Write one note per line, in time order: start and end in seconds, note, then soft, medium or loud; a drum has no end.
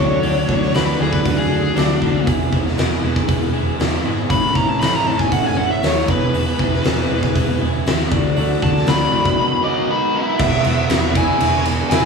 0.00 0.17 D2 medium
0.00 0.22 D3 loud
0.00 0.22 F#3 medium
0.00 0.22 A3 medium
0.00 0.23 D4 medium
0.00 0.23 F#4 medium
0.00 0.22 A4 medium
0.00 0.72 C#5 loud
0.22 0.42 D2 medium
0.22 0.47 D3 medium
0.22 0.47 F#3 medium
0.22 0.48 A3 medium
0.22 0.48 D4 medium
0.22 0.48 F#4 loud
0.22 0.48 A4 loud
0.22 open hi-hat medium
0.48 0.68 D2 medium
0.48 0.73 D3 medium
0.48 0.72 F#3 medium
0.48 0.73 A3 medium
0.48 0.74 D4 medium
0.48 0.74 F#4 medium
0.48 0.73 A4 medium
0.48 kick medium
0.63 snare soft
0.74 0.93 D2 medium
0.74 0.98 D3 medium
0.74 0.98 F#3 medium
0.74 0.99 A3 medium
0.74 0.99 D4 medium
0.74 1.00 F#4 medium
0.74 0.98 A4 medium
0.74 0.99 B4 medium
0.74 snare loud
0.74 open hi-hat medium
0.99 1.19 D2 medium
0.99 1.23 D3 medium
0.99 1.23 F#3 medium
0.99 1.24 A3 medium
0.99 1.24 D4 medium
0.99 1.24 F#4 medium
0.99 1.13 G#4 medium
0.99 1.24 A4 medium
1.13 1.37 B4 medium
1.13 kick medium
1.24 1.45 D2 medium
1.24 1.49 D3 medium
1.24 1.48 F#3 medium
1.24 1.49 A3 medium
1.24 1.50 D4 loud
1.24 1.50 F#4 loud
1.24 1.49 A4 medium
1.24 kick loud
1.24 open hi-hat medium
1.38 1.75 G#4 medium
1.50 1.70 D2 medium
1.50 1.74 D3 medium
1.50 1.74 F#3 medium
1.50 1.75 A3 medium
1.50 1.75 D4 medium
1.50 1.75 F#4 medium
1.50 1.75 A4 medium
1.75 1.96 D2 medium
1.75 2.00 D3 medium
1.75 2.00 F#3 medium
1.75 2.00 A3 medium
1.75 2.25 D4 medium
1.75 2.00 D4 medium
1.75 2.01 F#4 medium
1.75 2.00 A4 medium
1.75 snare loud
1.75 open hi-hat medium
2.01 2.21 D2 medium
2.01 2.25 D3 medium
2.01 2.25 F#3 medium
2.01 2.25 A3 medium
2.01 2.25 D4 medium
2.01 2.26 F#4 medium
2.01 2.25 A4 medium
2.01 kick medium
2.26 2.46 E1 medium
2.26 2.51 E3 medium
2.26 2.51 G#3 medium
2.26 2.51 B3 medium
2.26 2.52 E4 medium
2.26 2.51 G#4 loud
2.26 kick loud
2.26 open hi-hat medium
2.51 2.72 E1 medium
2.51 2.77 E3 medium
2.51 2.76 G#3 medium
2.51 2.76 B3 medium
2.51 2.78 E4 medium
2.51 2.76 G#4 medium
2.51 kick medium
2.67 snare soft
2.77 2.97 E1 medium
2.77 3.02 E3 medium
2.77 3.02 G#3 medium
2.77 3.02 B3 medium
2.77 3.03 E4 medium
2.77 3.02 G#4 medium
2.77 snare loud
2.77 open hi-hat medium
3.02 3.22 E1 medium
3.02 3.27 E3 medium
3.02 3.26 G#3 medium
3.02 3.26 B3 medium
3.02 3.28 E4 medium
3.02 3.28 G#4 medium
3.16 kick medium
3.27 3.48 E1 medium
3.27 3.52 E3 medium
3.27 3.52 G#3 loud
3.27 3.52 B3 loud
3.27 3.53 E4 loud
3.27 3.53 G#4 loud
3.27 kick loud
3.27 open hi-hat medium
3.52 3.73 E1 medium
3.52 3.77 E3 medium
3.52 3.77 G#3 medium
3.52 3.77 B3 medium
3.52 3.78 E4 medium
3.52 3.78 G#4 medium
3.78 3.98 E2 medium
3.78 4.04 E3 medium
3.78 4.03 G#3 medium
3.78 4.03 B3 medium
3.78 4.04 E4 medium
3.78 4.04 G#4 medium
3.78 snare loud
3.78 open hi-hat medium
4.04 4.24 G#1 medium
4.04 4.29 E3 medium
4.04 4.28 G#3 medium
4.04 4.29 B3 medium
4.04 4.30 E4 medium
4.04 4.29 G#4 medium
4.28 4.49 A1 medium
4.28 4.54 A2 medium
4.28 4.55 E3 medium
4.28 4.54 A3 medium
4.28 4.55 C#4 medium
4.28 4.55 E4 medium
4.28 4.54 A4 medium
4.28 4.55 B5 loud
4.28 kick loud
4.28 open hi-hat medium
4.55 4.75 A1 medium
4.55 4.79 A2 medium
4.55 4.81 E3 medium
4.55 4.80 A3 medium
4.55 4.80 C#4 medium
4.55 4.81 E4 medium
4.55 4.80 A4 medium
4.55 4.68 A#5 medium
4.55 kick medium
4.69 4.80 A5 medium
4.80 5.00 A1 medium
4.80 5.05 A2 medium
4.80 5.06 E3 medium
4.80 5.06 A3 medium
4.80 5.06 C#4 medium
4.80 5.07 E4 medium
4.80 5.05 A4 medium
4.80 4.93 B5 medium
4.80 snare loud
4.80 open hi-hat medium
4.95 5.07 A#5 medium
5.06 5.25 A1 medium
5.06 5.30 A2 medium
5.06 5.31 E3 medium
5.06 5.31 A3 medium
5.06 5.31 C#4 medium
5.06 5.32 E4 medium
5.06 5.31 A4 medium
5.06 5.20 A5 medium
5.19 5.32 G#5 medium
5.19 kick medium
5.31 5.51 A1 medium
5.31 5.56 A2 medium
5.31 5.56 E3 medium
5.31 5.57 A3 loud
5.31 5.57 C#4 loud
5.31 5.57 E4 medium
5.31 5.56 A4 loud
5.31 5.46 F#5 medium
5.31 kick medium
5.31 open hi-hat medium
5.46 5.57 G#5 medium
5.57 5.76 A1 medium
5.57 5.81 A2 medium
5.57 5.82 E3 medium
5.57 5.82 A3 medium
5.57 5.82 C#4 medium
5.57 5.82 E4 medium
5.57 5.82 A4 medium
5.57 5.70 F#5 medium
5.71 5.85 E5 medium
5.82 6.02 D#2 medium
5.82 6.06 A2 medium
5.82 6.07 E3 medium
5.82 6.07 A3 medium
5.82 6.07 C#4 medium
5.82 6.07 E4 medium
5.82 6.07 A4 medium
5.82 6.09 C#5 medium
5.82 snare loud
5.82 open hi-hat medium
6.08 6.28 E1 medium
6.08 6.33 E3 medium
6.08 6.33 G#3 medium
6.08 6.33 B3 loud
6.08 6.34 E4 loud
6.08 6.33 G#4 loud
6.08 7.58 B4 medium
6.08 kick loud
6.33 6.53 E1 medium
6.33 6.59 E3 medium
6.33 6.59 G#3 loud
6.33 6.59 B3 loud
6.33 6.59 E4 loud
6.33 6.58 G#4 loud
6.33 open hi-hat medium
6.59 6.79 E1 medium
6.59 6.83 E3 medium
6.59 6.84 G#3 medium
6.59 6.84 B3 medium
6.59 6.84 E4 medium
6.59 6.83 G#4 medium
6.59 kick medium
6.74 snare soft
6.84 7.04 E1 medium
6.84 7.08 E3 medium
6.84 7.08 G#3 medium
6.84 7.09 B3 medium
6.84 7.09 E4 medium
6.84 7.09 G#4 medium
6.84 snare loud
6.84 open hi-hat medium
7.09 7.29 E1 medium
7.09 7.34 E3 medium
7.09 7.34 G#3 medium
7.09 7.35 B3 loud
7.09 7.35 E4 medium
7.09 7.34 G#4 loud
7.23 kick medium
7.35 7.54 E1 medium
7.35 7.59 E3 medium
7.35 7.60 G#3 loud
7.35 7.60 B3 loud
7.35 7.60 E4 loud
7.35 7.60 G#4 loud
7.35 kick medium
7.35 open hi-hat medium
7.60 7.80 E1 medium
7.60 7.85 E3 medium
7.60 7.85 G#3 medium
7.60 7.86 B3 medium
7.60 7.86 E4 medium
7.60 7.86 G#4 medium
7.86 8.05 D#2 medium
7.86 8.10 E3 medium
7.86 8.10 G#3 medium
7.86 8.10 B3 medium
7.86 8.10 E4 medium
7.86 8.10 G#4 loud
7.86 snare loud
7.86 open hi-hat medium
8.11 8.31 D2 medium
8.11 8.36 D3 medium
8.11 8.37 F#3 loud
8.11 8.37 A3 loud
8.11 8.37 D4 loud
8.11 8.35 F#4 loud
8.11 kick loud
8.36 8.56 D2 loud
8.36 8.61 D3 medium
8.36 8.61 F#3 loud
8.36 8.62 A3 medium
8.36 8.62 D4 loud
8.36 8.61 F#4 loud
8.36 open hi-hat medium
8.62 8.82 D2 medium
8.62 8.86 D3 medium
8.62 8.87 F#3 medium
8.62 8.87 A3 medium
8.62 8.87 D4 medium
8.62 8.86 F#4 medium
8.62 8.87 A5 loud
8.62 kick medium
8.76 snare soft
8.87 9.06 D2 medium
8.87 9.11 D3 medium
8.87 9.11 F#3 medium
8.87 9.11 A3 medium
8.87 9.12 D4 medium
8.87 9.11 F#4 medium
8.87 9.62 B5 medium
8.87 snare loud
8.87 open hi-hat medium
9.12 9.32 A#1 medium
9.12 9.36 D3 medium
9.12 9.36 F#3 medium
9.12 9.37 A3 medium
9.12 9.37 D4 loud
9.12 9.36 F#4 loud
9.25 kick medium
9.37 9.61 B2 loud
9.37 9.61 D#3 medium
9.37 9.62 F#3 loud
9.37 9.61 G#3 medium
9.37 9.62 B3 loud
9.37 9.62 D#4 loud
9.37 9.62 F#4 medium
9.62 9.87 B2 medium
9.62 9.86 D#3 medium
9.62 9.88 F#3 medium
9.62 9.86 G#3 medium
9.62 9.88 B3 medium
9.62 10.11 B3 medium
9.62 9.88 D#4 medium
9.62 9.87 F#4 loud
9.62 10.15 D#5 medium
9.62 9.88 D6 medium
9.87 10.12 B2 medium
9.87 10.11 D#3 medium
9.87 10.12 F#3 medium
9.87 10.12 G#3 medium
9.87 10.12 B3 medium
9.87 10.13 D#4 loud
9.87 10.13 F#4 loud
9.87 10.39 B5 loud
10.13 10.37 B2 medium
10.13 10.37 D#3 medium
10.13 10.37 F#3 medium
10.13 10.37 G#3 medium
10.13 10.38 B3 loud
10.13 11.12 B3 medium
10.13 10.38 D#4 medium
10.13 10.38 F#4 medium
10.13 11.12 E5 medium
10.38 10.59 E1 loud
10.38 10.88 E3 loud
10.38 10.65 G#3 medium
10.38 10.64 B3 loud
10.38 10.64 E4 loud
10.38 kick loud
10.38 crash loud
10.64 10.84 E1 medium
10.64 10.88 G#3 medium
10.64 10.89 B3 medium
10.64 10.90 E4 medium
10.64 ride medium
10.89 11.29 E1 medium
10.89 11.16 E3 medium
10.89 11.15 G#3 medium
10.89 11.15 B3 medium
10.89 11.15 E4 medium
10.89 snare loud
10.89 ride loud
11.15 11.39 E3 medium
11.15 11.39 G#3 medium
11.15 11.40 B3 loud
11.15 11.41 E4 medium
11.15 11.62 E4 medium
11.15 11.63 G#5 loud
11.15 kick medium
11.15 ride medium
11.40 11.80 E1 medium
11.40 11.90 E3 medium
11.40 11.66 G#3 medium
11.40 11.64 B3 medium
11.40 11.65 E4 medium
11.40 ride loud
11.54 snare soft
11.65 11.90 G#3 medium
11.65 11.91 B3 medium
11.65 11.92 E4 medium
11.65 ride medium
11.90 12.05 E1 loud
11.90 12.05 E3 loud
11.90 12.05 G#3 loud
11.90 12.05 B3 loud
11.90 12.05 E4 medium
11.90 12.05 E4 loud
11.90 12.05 G#5 loud
11.90 snare loud
11.90 ride loud